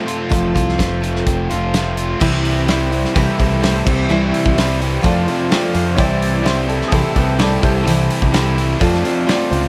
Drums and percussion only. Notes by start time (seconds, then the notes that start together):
0.08 closed hi-hat
0.32 kick, closed hi-hat
0.56 kick, closed hi-hat
0.69 snare
0.79 kick, snare, closed hi-hat
1.04 closed hi-hat
1.16 snare
1.27 kick, closed hi-hat
1.51 closed hi-hat
1.74 snare, closed hi-hat
1.97 closed hi-hat
2.21 kick, crash
2.45 open hi-hat
2.68 snare, open hi-hat
2.92 open hi-hat
3.05 snare
3.16 kick, open hi-hat
3.40 kick, open hi-hat
3.64 snare, open hi-hat
3.87 kick, crash
4.34 open hi-hat
4.46 kick
4.58 snare, open hi-hat
4.82 open hi-hat
5.04 kick, open hi-hat
5.28 open hi-hat
5.52 snare, open hi-hat
5.75 open hi-hat
5.98 kick, open hi-hat
6.22 open hi-hat
6.46 snare, open hi-hat
6.70 open hi-hat
6.82 snare
6.92 kick, open hi-hat
7.16 kick, open hi-hat
7.39 snare, open hi-hat
7.63 kick, open hi-hat
7.88 open hi-hat
8.10 open hi-hat
8.22 kick
8.34 snare, open hi-hat
8.58 open hi-hat
8.81 kick, open hi-hat
8.94 snare
9.05 open hi-hat
9.29 snare, open hi-hat
9.53 open hi-hat